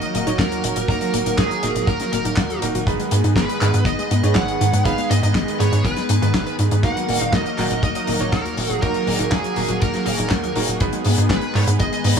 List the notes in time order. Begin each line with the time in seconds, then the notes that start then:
Already playing: D#3 F#3 A#3 D#4 F#4 A#4 D#5
0.02 F#3, closed hi-hat
0.14 D#1 A#3, closed hi-hat
0.27 D#1 A#3 D#4 F#4 C#5, closed hi-hat
0.39 D#2 A#3 A#4, kick, snare, clap, closed hi-hat
0.51 F#3, closed hi-hat
0.64 D#1 D#3, closed hi-hat
0.76 D#1 F#3, closed hi-hat
0.88 D#2 D#3 A#3 D#4 F#4 A#4, kick, closed hi-hat
1.01 F#3, closed hi-hat
1.13 D#1 A#3, closed hi-hat
1.26 D#1 D#4, closed hi-hat
1.38 D#2 A#3 G#4, kick, snare, clap, closed hi-hat
1.51 F#3, closed hi-hat
1.63 D#1 D#3 A#3 D#4 F#4 A#4, closed hi-hat
1.75 D#1 F#3, closed hi-hat
1.87 D#2 D#3 A#4, kick, closed hi-hat
2.00 F#3, snare, closed hi-hat
2.13 D#1 A#3 A#4, closed hi-hat
2.25 D#1 D#4, closed hi-hat
2.36 D#2 A#3, kick, snare, clap, closed hi-hat
2.50 F#3, closed hi-hat
2.62 D#1 D#3 A#3 D#4 F#4 A#4, closed hi-hat
2.75 D#1 F#3, closed hi-hat
2.87 G#1 D#3 G#3 B3 D#4 G#4 B4, kick, closed hi-hat
3.00 G#3, closed hi-hat
3.11 G#2 B3, closed hi-hat
3.24 G#2 D#4, closed hi-hat
3.36 G#1 B3 B4, kick, snare, clap, closed hi-hat
3.49 G#3, closed hi-hat
3.61 G#2 D#3 B3 D#4 G#4 B4, clap, closed hi-hat
3.74 G#2 G#3, closed hi-hat
3.85 G#1 D#3 D#5, kick, closed hi-hat
3.99 G#3, closed hi-hat
4.11 G#2 B3, closed hi-hat
4.23 G#2 B3 D#4 G#4 C#5, closed hi-hat
4.35 G#1 B3 F#5, kick, snare, clap, closed hi-hat
4.48 G#3, closed hi-hat
4.61 G#2 D#3, closed hi-hat
4.73 G#2 G#3, closed hi-hat
4.85 G#1 D#3 B3 D#4 G#4 B4 F5, kick, closed hi-hat
4.98 G#3, closed hi-hat
5.10 G#2 B3 D#5, closed hi-hat
5.23 G#2 D#4, closed hi-hat
5.35 G#1 B3, kick, snare, clap, closed hi-hat
5.47 G#3, closed hi-hat
5.60 G#2 D#3 B3 D#4 G#4 B4 C#5, closed hi-hat
5.72 G#2 G#3, closed hi-hat
5.85 G#1 D#3 B4, kick, closed hi-hat
5.96 G#3, snare, closed hi-hat
6.09 G#2 D#4, closed hi-hat
6.22 G#2 D#3 B3 D#4 G#4 B4, closed hi-hat
6.34 G#1 D#3, kick, snare, clap, closed hi-hat
6.46 B3, closed hi-hat
6.59 G#2 D#3, closed hi-hat
6.71 G#2 G#3, closed hi-hat
6.83 D#2 D#3 F#3 A#3 D#4 F#4 A#4 F#5, kick, closed hi-hat
6.96 F#3, closed hi-hat
7.09 D#1 A#3, open hi-hat
7.21 D#1 D#4 F5, closed hi-hat
7.33 D#2 A#3 D#5, kick, snare, clap, closed hi-hat
7.46 F#3, closed hi-hat
7.58 D#1 D#3 A#3 D#4 F#4 A#4, clap, open hi-hat
7.71 D#1 F#3, closed hi-hat
7.83 D#2 D#3 D#5, kick, closed hi-hat
7.95 F#3, closed hi-hat
8.07 D#1 A#3, open hi-hat
8.19 D#1 A#3 D#4 F#4 C#5, closed hi-hat
8.33 D#2 A#3 A#4, kick, snare, clap, closed hi-hat
8.45 F#3, closed hi-hat
8.57 D#1 D#3, open hi-hat
8.70 D#1 F#3, closed hi-hat
8.82 D#2 D#3 A#3 D#4 F#4 G#4 A#4, kick, closed hi-hat
8.94 F#3, closed hi-hat
9.07 D#1 A#3, open hi-hat
9.19 D#1 D#4, closed hi-hat
9.31 D#2 A#3 G#4, kick, snare, clap, closed hi-hat
9.44 F#3, closed hi-hat
9.56 D#1 D#3 A#3 D#4 F#4 A#4, open hi-hat
9.68 D#1 F#3, closed hi-hat
9.81 D#2 D#3 A#4, kick, closed hi-hat
9.94 F#3, snare, closed hi-hat
10.06 D#1 A#3 A#4, open hi-hat
10.18 D#1 D#4, closed hi-hat
10.29 D#2 A#3, kick, snare, clap, closed hi-hat
10.43 F#3, closed hi-hat
10.56 D#1 D#3 A#3 D#4 F#4 A#4, open hi-hat
10.68 D#1 F#3, closed hi-hat
10.80 G#1 D#3 G#3 B3 D#4 G#4 B4, kick, closed hi-hat
10.93 G#3, closed hi-hat
11.05 G#2 B3, open hi-hat
11.18 G#2 D#4, closed hi-hat
11.30 G#1 B3 B4, kick, snare, clap, closed hi-hat
11.41 G#3, closed hi-hat
11.55 G#2 D#3 B3 D#4 G#4 B4 C#5, clap, open hi-hat
11.67 G#2 G#3, closed hi-hat
11.80 G#1 D#3 D#5, kick, closed hi-hat
11.92 G#3, closed hi-hat
12.04 G#2 B3, open hi-hat